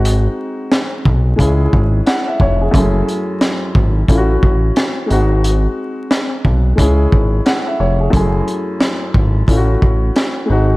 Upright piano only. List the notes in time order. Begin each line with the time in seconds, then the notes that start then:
Already playing: G#3 C4 D#4 F#4
1.36 G#3 C#4
1.40 E4 G#4
2.06 F#5
2.28 E5
2.41 C#5
2.61 G#4
2.71 F#2 A3 C#4
2.76 E4 G#4
4.08 A3 C#4 E4 F4
4.18 F#4
5.06 G#3 C4
5.10 D#4 F#4
6.75 G#3 C#4 E4
6.81 G#4
7.46 F#5
7.67 E5
7.80 C#5
8.00 G#4
8.10 F#2 A3 C#4
8.15 E4 G#4
9.47 A3 C#4 E4 F4
9.57 F#4
10.46 G#3 C4 D#4
10.52 F#4